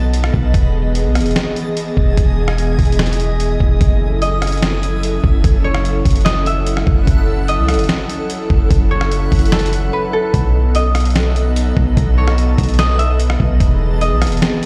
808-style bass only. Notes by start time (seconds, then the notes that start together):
Already playing: B1
0.34 B1
0.54 E1
1.05 B1
1.21 E1
1.97 E1
2.17 E1
2.79 E1
3.60 E1
3.81 F#1
5.24 F#1
5.44 F#1
6.05 F#1
6.87 F#1
7.07 F#1
7.58 C#2
7.74 F#1
8.50 F#1
8.71 F#1
9.32 F#1
10.34 B1
11.77 B1
11.97 B1
12.58 B1
13.40 B1
13.60 E1
14.11 B1
14.27 E1